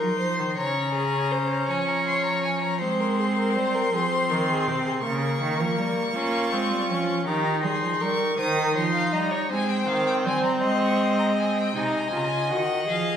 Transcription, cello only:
0.02 0.09 F#3 medium
0.21 0.40 F3 medium
0.39 0.57 D#3 medium
0.57 1.67 C#3 medium
1.69 2.83 F3 medium
2.81 3.57 G#3 loud
3.56 3.92 G3 loud
3.93 4.32 F3 loud
4.30 4.69 D#3 loud
4.67 5.04 C3 medium
5.04 5.41 C#3 loud
5.41 5.62 D#3 loud
5.60 5.80 F3 loud
5.78 6.15 G3 loud
6.16 6.54 A#3 loud
6.53 6.73 G#3 loud
6.71 6.91 G3 loud
6.90 7.26 F3 loud
7.27 7.65 D#3 loud
7.64 7.82 G3 loud
7.82 7.90 F3 medium
8.01 8.38 G3 loud
8.38 8.75 D#3 loud
8.76 9.13 F3 loud
9.13 9.50 G3 loud
9.51 9.88 G#3 loud
9.89 10.27 D#3 loud
10.26 10.65 G3 loud
10.63 11.75 G#3 loud
11.76 12.12 C3 medium
12.13 12.52 C#3 medium
12.50 12.88 D#3 medium
12.88 13.17 F3 medium

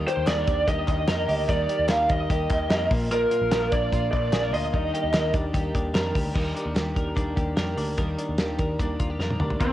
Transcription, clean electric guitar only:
0.00 1.47 D#3 medium
0.00 0.48 D#4 medium
0.00 0.27 A#4 medium
0.07 0.67 G4 medium
0.27 0.38 G#4 medium
0.38 1.07 A#4 medium
0.48 1.51 D4 medium
0.68 1.27 G4 medium
1.09 1.90 A#4 medium
1.29 1.68 G4 medium
1.48 2.95 D#3 medium
1.69 2.29 G4 medium
1.90 2.70 A#4 medium
2.30 2.95 G4 medium
2.71 3.52 A#4 medium
2.91 3.10 A#2 medium
3.11 4.73 A#2 medium
3.32 3.92 F4 medium
3.52 4.33 A#4 medium
3.73 4.12 D4 medium
3.93 4.52 F4 medium
4.13 5.33 D4 medium
4.33 4.43 G#4 medium
4.43 4.77 A#4 medium
4.53 4.77 F4 medium
4.73 6.34 D#3 medium
4.94 5.53 G4 medium
5.14 5.94 A#4 medium
5.33 5.74 D4 medium
5.54 6.15 G4 medium
5.75 6.54 D4 medium
5.94 6.34 A#4 medium
6.15 6.75 G4 medium
6.34 7.97 D#3 medium
6.34 6.96 A#4 medium
6.54 7.15 D4 medium
6.75 7.35 G4 medium
6.96 7.56 A#4 medium
7.16 7.76 D4 medium
7.36 8.38 G4 medium
7.57 7.98 A#4 medium
7.77 8.17 D4 medium
7.98 9.60 D#3 medium
7.98 8.59 A#4 medium
8.18 8.78 D4 medium
8.39 8.99 G4 medium
8.59 9.19 A#4 medium
8.79 9.39 D4 medium
8.99 9.10 F4 medium
9.10 9.65 G4 soft
9.20 9.61 A#4 medium
9.40 9.65 D4 medium
9.60 9.73 D#3 medium
9.60 9.73 F4 medium

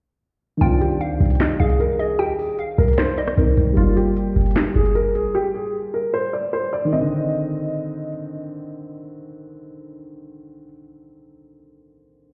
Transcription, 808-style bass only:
0.61 1.02 C2 loud
1.01 1.19 D2 loud
1.20 1.58 C2 loud
1.60 2.21 C2 loud
2.19 2.50 D#2 loud
2.49 2.77 C2 loud
2.78 3.35 C2 loud
3.37 3.56 C2 loud
3.57 3.76 C2 loud
3.77 4.34 G1 loud
4.36 4.55 G1 loud
4.76 5.17 G1 loud
5.15 5.26 A#1 loud
5.25 5.34 G1 loud

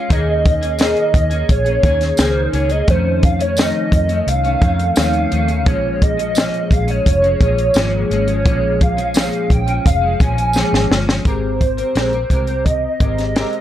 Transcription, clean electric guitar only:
0.09 0.62 D#3 medium
0.09 0.62 A#3 medium
0.09 0.62 C#4 medium
0.09 0.60 G#4 medium
0.61 0.78 A#3 soft
0.61 0.78 C#4 soft
0.61 0.79 G#4 medium
0.78 1.31 D#3 medium
0.78 1.31 A#3 medium
0.78 1.30 C#4 medium
0.78 1.29 G#4 medium
1.30 1.66 A#3 soft
1.30 1.65 C#4 medium
1.30 1.63 G#4 medium
1.65 1.83 A#3 soft
1.65 1.83 C#4 medium
1.65 1.83 G#4 medium
1.83 2.16 D#3 medium
1.83 2.17 A#3 medium
1.83 2.18 C#4 medium
1.83 2.18 G#4 medium
2.17 2.51 D#3 medium
2.17 2.52 A#3 medium
2.17 2.53 C#4 medium
2.17 2.54 G#4 medium
2.52 2.70 D#3 medium
2.52 2.70 A#3 medium
2.52 2.69 C#4 medium
2.52 2.68 G#4 medium
2.69 2.88 A#3 soft
2.69 2.88 C#4 soft
2.69 2.87 G#4 medium
2.87 3.40 F2 medium
2.87 3.40 D#3 medium
2.87 3.40 A3 medium
2.87 3.38 C#4 medium
3.39 3.56 D#3 soft
3.39 3.57 A3 soft
3.39 3.57 C#4 medium
3.57 4.09 F2 medium
3.57 4.09 D#3 medium
3.57 4.09 A3 medium
3.57 4.07 C#4 medium
4.09 4.45 D#3 soft
4.09 4.44 A3 medium
4.09 4.42 C#4 medium
4.44 4.61 D#3 soft
4.44 4.62 A3 medium
4.44 4.61 C#4 medium
4.61 4.95 F2 medium
4.61 4.96 D#3 medium
4.61 4.96 A3 medium
4.61 4.97 C#4 medium
4.96 5.29 F2 medium
4.96 5.30 D#3 medium
4.96 5.31 A3 medium
4.96 5.32 C#4 loud
5.30 5.48 F2 medium
5.30 5.49 D#3 medium
5.30 5.48 A3 medium
5.30 5.46 C#4 medium
5.48 5.66 D#3 soft
5.48 5.66 A3 medium
5.48 5.66 C#4 medium
5.65 6.18 A#2 medium
5.65 6.18 F3 medium
5.65 6.18 G#3 medium
5.65 6.16 C#4 medium
6.17 6.35 F3 soft
6.17 6.36 G#3 soft
6.17 6.35 C#4 medium
6.35 6.88 A#2 medium
6.35 6.88 F3 medium
6.35 6.88 G#3 medium
6.35 6.86 C#4 medium
6.87 7.24 F3 soft
6.87 7.23 G#3 soft
6.87 7.21 C#4 medium
7.22 7.40 F3 medium
7.22 7.41 G#3 soft
7.22 7.40 C#4 medium
7.40 7.73 A#2 medium
7.40 7.74 F3 medium
7.40 7.75 G#3 medium
7.40 7.76 C#4 medium
7.75 8.08 A#2 loud
7.75 8.09 F3 loud
7.75 8.11 G#3 loud
7.75 8.11 C#4 loud
8.09 8.27 A#2 medium
8.09 8.28 F3 medium
8.09 8.27 G#3 medium
8.09 8.26 C#4 medium
8.27 8.44 F3 medium
8.27 8.45 G#3 medium
8.27 8.45 C#4 medium
8.45 8.97 A#2 medium
8.45 8.98 F3 medium
8.45 8.97 G#3 medium
8.45 8.96 C#4 medium
8.97 9.14 F3 soft
8.97 9.15 G#3 soft
8.97 9.15 C#4 medium
9.14 9.67 A#2 medium
9.14 9.68 F3 medium
9.14 9.67 G#3 medium
9.14 9.65 C#4 medium
9.66 10.03 F3 soft
9.66 10.02 G#3 medium
9.66 10.00 C#4 medium
10.01 10.19 F3 soft
10.01 10.20 G#3 soft
10.01 10.19 C#4 medium
10.19 10.37 A#2 medium
10.19 10.38 F3 medium
10.19 10.37 G#3 medium
10.19 10.36 C#4 medium
10.37 10.54 F3 soft
10.37 10.55 G#3 soft
10.37 10.55 C#4 medium
10.54 10.88 A#2 medium
10.54 10.89 F3 medium
10.54 10.90 G#3 medium
10.54 10.91 C#4 loud
10.89 11.07 A#2 medium
10.89 11.08 F3 medium
10.89 11.07 G#3 medium
10.89 11.05 C#4 medium
11.07 11.24 F3 medium
11.07 11.23 G#3 medium
11.07 11.25 C#4 medium
11.25 11.77 G#3 medium
11.25 11.78 C4 medium
11.25 11.78 G4 medium
11.25 11.76 A#4 medium
11.77 11.95 C4 soft
11.77 11.95 G4 soft
11.77 11.95 A#4 soft
11.95 12.13 G#3 medium
11.95 12.13 C4 medium
11.95 12.12 G4 medium
11.95 12.11 A#4 medium
12.12 12.30 C4 soft
12.12 12.31 G4 soft
12.12 12.30 A#4 soft
12.30 12.48 G#3 medium
12.30 12.48 C4 medium
12.30 12.48 G4 medium
12.30 12.46 A#4 medium
12.47 13.00 C4 soft
12.47 13.01 G4 soft
12.47 13.00 A#4 soft
13.00 13.34 G#3 medium
13.00 13.35 C4 medium
13.00 13.35 G4 medium
13.00 13.36 A#4 medium
13.35 13.61 G#3 medium
13.35 13.61 C4 medium
13.35 13.61 G4 medium
13.35 13.61 A#4 medium

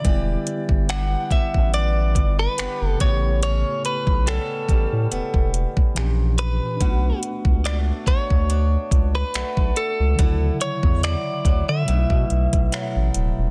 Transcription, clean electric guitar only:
0.00 0.89 D5 medium
0.90 1.32 F#5 loud
1.32 1.74 E5 medium
1.74 2.39 D5 loud
2.39 2.87 B4 medium
2.87 3.01 A4 medium
3.01 3.40 C#5 medium
3.43 3.82 C#5 loud
3.86 4.29 B4 medium
4.28 5.50 A4 medium
6.39 7.19 B4 loud
7.66 7.77 D5 medium
8.08 9.15 C#5 medium
9.15 9.78 B4 medium
9.77 10.57 A4 medium
10.61 11.04 C#5 medium
11.04 11.65 D5 loud
11.69 13.11 E5 medium

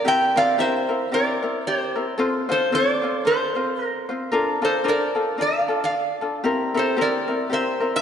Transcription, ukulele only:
0.05 0.35 C4 medium
0.05 0.35 E4 medium
0.05 0.35 G4 medium
0.05 0.34 A#4 medium
0.36 0.57 C4 medium
0.36 0.58 E4 medium
0.36 0.57 G4 medium
0.36 0.58 A#4 medium
0.58 0.89 C4 medium
0.58 0.88 E4 medium
0.58 0.89 G4 medium
0.58 0.88 A#4 medium
0.89 1.11 C4 soft
0.89 1.12 E4 medium
0.89 1.12 A#4 medium
1.12 1.42 C4 medium
1.12 1.42 E4 medium
1.12 1.42 G4 medium
1.12 1.41 A#4 medium
1.43 1.97 C4 soft
1.43 1.95 E4 medium
1.43 1.94 A#4 medium
1.96 2.17 C4 soft
1.96 2.19 E4 soft
1.96 2.18 A#4 medium
2.18 2.49 C4 loud
2.18 2.48 F4 medium
2.18 2.48 A4 medium
2.18 2.48 C5 medium
2.49 2.71 C4 medium
2.49 2.72 F4 medium
2.49 2.71 A4 medium
2.49 2.71 C5 medium
2.72 3.02 C4 medium
2.72 3.02 F4 medium
2.72 3.02 A4 medium
2.72 3.01 C5 medium
3.02 3.24 C4 soft
3.02 3.25 F4 soft
3.02 3.25 C5 medium
3.25 3.56 C4 medium
3.25 3.55 F4 medium
3.25 3.55 A4 medium
3.25 3.54 C5 medium
3.55 4.09 C4 soft
3.55 4.09 F4 medium
3.55 4.08 C5 medium
4.09 4.32 C4 soft
4.09 4.32 F4 soft
4.09 4.31 C5 medium
4.32 4.61 D4 medium
4.32 4.61 F4 medium
4.32 4.61 A4 medium
4.32 4.62 A#4 medium
4.62 4.83 D4 medium
4.62 4.84 F4 medium
4.62 4.84 A4 medium
4.62 4.83 A#4 medium
4.84 5.15 D4 medium
4.84 5.15 F4 medium
4.84 5.14 A4 medium
4.84 5.15 A#4 medium
5.15 5.37 D4 soft
5.15 5.38 F4 soft
5.15 5.38 A4 medium
5.38 5.68 D4 medium
5.38 5.69 F4 medium
5.38 5.67 A4 medium
5.38 5.68 A#4 medium
5.68 6.22 D4 soft
5.68 6.21 F4 soft
5.68 6.20 A4 medium
6.21 6.44 D4 soft
6.21 6.44 F4 soft
6.21 6.44 A4 medium
6.44 6.74 C4 medium
6.44 6.74 E4 medium
6.44 6.74 G4 medium
6.44 6.73 A#4 medium
6.74 6.96 C4 medium
6.74 6.97 E4 medium
6.74 6.95 G4 medium
6.74 6.97 A#4 medium
6.97 7.28 C4 medium
6.97 7.28 E4 medium
6.97 7.27 G4 medium
6.97 7.26 A#4 medium
7.28 7.49 C4 soft
7.28 7.50 E4 soft
7.28 7.50 A#4 medium
7.50 7.81 C4 medium
7.50 7.80 E4 medium
7.50 7.80 G4 medium
7.50 7.79 A#4 medium
7.80 8.02 C4 soft
7.80 8.02 E4 soft
7.80 8.02 A#4 medium

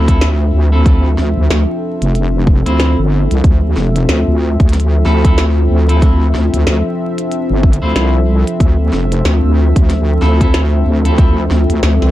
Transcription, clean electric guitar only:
0.08 0.25 C4 medium
0.08 0.25 E4 medium
0.08 0.25 F4 medium
0.08 0.25 A4 loud
0.72 0.83 C4 medium
0.72 0.83 E4 medium
0.72 0.83 F4 medium
0.72 0.83 A4 medium
0.85 1.07 C4 medium
0.85 1.07 E4 medium
0.85 1.07 F4 medium
2.66 2.96 C4 medium
2.66 2.97 E4 medium
2.66 2.97 F4 medium
2.66 2.97 C5 medium
5.05 5.22 C4 medium
5.05 5.22 E4 medium
5.05 5.22 F4 medium
5.05 5.22 A4 medium
5.24 5.41 C4 medium
5.24 5.41 E4 medium
5.24 5.41 F4 medium
5.24 5.41 A4 loud
5.89 5.99 C4 medium
5.89 5.99 E4 medium
5.89 5.99 F4 medium
5.89 5.99 A4 medium
6.02 6.24 C4 medium
6.02 6.24 E4 medium
6.02 6.24 F4 medium
6.02 6.24 A4 medium
7.82 8.13 C4 medium
7.82 8.13 E4 medium
7.82 8.13 F4 medium
7.82 8.13 C5 medium
10.21 10.38 C4 medium
10.21 10.38 E4 medium
10.21 10.38 F4 medium
10.21 10.38 A4 medium
10.40 10.57 C4 medium
10.40 10.57 E4 medium
10.40 10.57 F4 medium
10.40 10.57 A4 loud
11.05 11.15 C4 medium
11.05 11.15 E4 medium
11.05 11.15 F4 medium
11.05 11.15 A4 medium
11.18 11.40 C4 medium
11.18 11.40 E4 medium
11.18 11.40 F4 medium
11.18 11.40 A4 medium

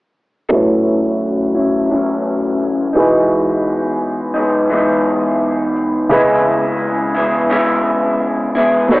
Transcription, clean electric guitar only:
0.49 1.55 A2 medium
0.49 1.56 F#3 medium
0.49 1.55 C#4 medium
0.49 1.54 E4 medium
1.55 1.89 F#3 soft
1.55 1.90 C#4 soft
1.55 1.90 E4 soft
1.90 2.96 A2 medium
1.90 2.96 F#3 medium
1.90 2.95 C#4 medium
1.90 2.93 E4 medium
2.93 4.37 G#3 soft
2.93 4.36 B3 soft
2.93 4.33 D#4 medium
2.99 4.69 E3 soft
4.34 4.70 G#3 soft
4.34 4.71 B3 soft
4.34 4.70 D#4 soft
4.70 6.10 E3 medium
4.70 6.12 G#3 medium
4.70 6.12 B3 medium
4.75 6.13 D#4 medium
6.11 7.16 C#3 medium
6.11 7.17 G#3 medium
6.11 7.16 B3 medium
6.11 7.13 E4 medium
7.15 7.50 G#3 soft
7.15 7.50 B3 soft
7.15 7.51 E4 soft
7.50 8.56 C#3 medium
7.50 8.56 G#3 medium
7.50 8.56 B3 medium
7.50 8.54 E4 medium
8.55 8.91 G#3 soft
8.55 8.92 B3 soft
8.55 8.91 E4 soft
8.91 9.00 B2 medium
8.91 9.00 F#3 medium
8.91 9.00 A3 medium
8.91 9.00 D#4 medium

